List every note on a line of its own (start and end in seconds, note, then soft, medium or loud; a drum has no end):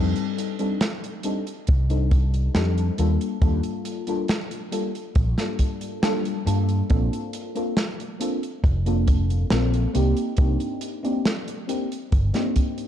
0.00 0.12 F2 medium
0.00 0.55 G3 medium
0.00 0.55 C4 medium
0.00 0.55 D4 medium
0.00 0.55 D#4 medium
0.00 0.55 A4 medium
0.16 closed hi-hat medium
0.38 closed hi-hat loud
0.59 0.77 G3 medium
0.59 0.77 C4 medium
0.59 0.77 D4 medium
0.59 0.78 D#4 medium
0.59 0.78 A4 medium
0.59 closed hi-hat medium
0.81 snare loud
0.81 closed hi-hat medium
1.04 closed hi-hat medium
1.23 1.43 G3 medium
1.23 1.43 C4 medium
1.23 1.43 D4 medium
1.23 1.43 D#4 medium
1.23 1.44 A4 medium
1.23 closed hi-hat medium
1.47 closed hi-hat medium
1.67 2.48 C2 medium
1.67 kick loud
1.67 closed hi-hat medium
1.90 2.50 G3 medium
1.90 2.50 C4 medium
1.90 2.50 D4 medium
1.90 2.50 D#4 medium
1.90 2.50 A4 medium
1.90 closed hi-hat medium
2.11 kick loud
2.11 closed hi-hat medium
2.34 closed hi-hat medium
2.54 2.89 F2 medium
2.54 2.93 G3 medium
2.54 2.93 C4 medium
2.54 2.93 D4 medium
2.54 2.94 D#4 medium
2.54 2.94 A4 medium
2.54 snare loud
2.54 closed hi-hat medium
2.78 closed hi-hat soft
2.98 3.16 D#2 medium
2.98 3.37 G3 medium
2.98 3.37 A#3 medium
2.98 3.37 D4 medium
2.98 3.38 F4 medium
2.98 3.38 A4 loud
2.98 closed hi-hat medium
3.21 closed hi-hat medium
3.41 3.59 D#2 loud
3.41 4.02 G3 medium
3.41 4.03 A#3 medium
3.41 4.03 D4 medium
3.41 4.03 F4 medium
3.41 4.03 A4 medium
3.41 kick loud
3.41 closed hi-hat medium
3.63 closed hi-hat medium
3.85 closed hi-hat loud
4.07 4.25 G3 medium
4.07 4.25 A#3 medium
4.07 4.25 D4 medium
4.07 4.26 F4 medium
4.07 4.26 A4 medium
4.07 closed hi-hat medium
4.28 snare loud
4.28 closed hi-hat medium
4.51 closed hi-hat medium
4.71 4.91 G3 medium
4.71 4.91 A#3 medium
4.71 4.91 D4 medium
4.71 4.91 F4 medium
4.71 4.91 A4 medium
4.71 closed hi-hat loud
4.95 closed hi-hat medium
5.15 5.33 A#1 medium
5.15 kick loud
5.15 closed hi-hat medium
5.38 5.98 G3 medium
5.38 5.98 A#3 medium
5.38 5.98 D4 medium
5.38 5.98 F4 medium
5.38 5.98 A4 medium
5.38 snare soft
5.38 closed hi-hat medium
5.59 kick medium
5.59 closed hi-hat medium
5.81 closed hi-hat medium
6.02 6.41 G3 medium
6.02 6.41 A#3 medium
6.02 6.42 D4 medium
6.02 6.42 F4 medium
6.02 6.42 A4 loud
6.02 snare loud
6.02 closed hi-hat medium
6.25 closed hi-hat medium
6.46 6.80 G2 medium
6.46 6.85 G3 medium
6.46 6.85 A#3 medium
6.46 6.85 D4 medium
6.46 6.85 F4 medium
6.46 6.85 A4 loud
6.46 closed hi-hat loud
6.69 closed hi-hat medium
6.89 7.08 A#1 medium
6.89 7.50 A#3 medium
6.89 7.51 C4 medium
6.89 7.51 D4 medium
6.89 7.51 F4 medium
6.89 7.51 A4 medium
6.89 kick loud
6.89 closed hi-hat medium
7.13 closed hi-hat medium
7.33 closed hi-hat medium
7.55 7.73 A#3 medium
7.55 7.73 C4 medium
7.55 7.73 D4 medium
7.55 7.74 F4 medium
7.55 7.74 A4 medium
7.55 closed hi-hat soft
7.77 snare loud
7.77 closed hi-hat medium
8.00 closed hi-hat medium
8.20 8.39 A#3 medium
8.20 8.39 C4 medium
8.20 8.39 D4 medium
8.20 8.39 F4 medium
8.20 8.39 A4 medium
8.20 closed hi-hat loud
8.43 closed hi-hat medium
8.64 9.43 F1 medium
8.64 kick loud
8.64 closed hi-hat medium
8.86 9.46 A#3 medium
8.86 9.46 C4 medium
8.86 9.46 D4 medium
8.86 9.46 F4 medium
8.86 9.46 A4 medium
8.86 closed hi-hat medium
9.08 kick loud
9.08 closed hi-hat medium
9.30 closed hi-hat medium
9.50 9.85 A#1 medium
9.50 9.89 A#3 medium
9.50 9.89 C4 medium
9.50 9.89 D4 medium
9.50 9.90 F4 medium
9.50 9.90 A4 medium
9.50 snare loud
9.50 closed hi-hat medium
9.74 closed hi-hat medium
9.94 10.12 C2 medium
9.94 10.33 A#3 medium
9.94 10.33 C4 medium
9.94 10.33 D4 medium
9.94 10.33 D#4 medium
9.94 10.33 G4 loud
9.94 closed hi-hat medium
10.17 closed hi-hat medium
10.37 10.55 C2 loud
10.37 10.98 A#3 medium
10.37 10.98 C4 medium
10.37 10.99 D4 medium
10.37 10.99 D#4 medium
10.37 10.99 G4 medium
10.37 kick loud
10.37 closed hi-hat medium
10.60 closed hi-hat medium
10.81 closed hi-hat loud
11.03 11.21 A#3 medium
11.03 11.21 C4 medium
11.03 11.21 D4 medium
11.03 11.21 D#4 medium
11.03 11.22 G4 medium
11.03 closed hi-hat medium
11.26 snare loud
11.26 closed hi-hat medium
11.48 closed hi-hat medium
11.68 11.87 A#3 medium
11.68 11.87 C4 medium
11.68 11.87 D4 medium
11.68 11.87 D#4 medium
11.68 11.87 G4 medium
11.68 closed hi-hat medium
11.92 closed hi-hat medium
12.12 12.29 G1 loud
12.12 kick loud
12.12 closed hi-hat medium
12.33 12.88 A#3 medium
12.33 12.88 C4 medium
12.33 12.88 D4 medium
12.33 12.88 D#4 medium
12.33 12.88 G4 medium
12.33 snare soft
12.33 closed hi-hat medium
12.56 kick medium
12.56 closed hi-hat medium
12.78 closed hi-hat soft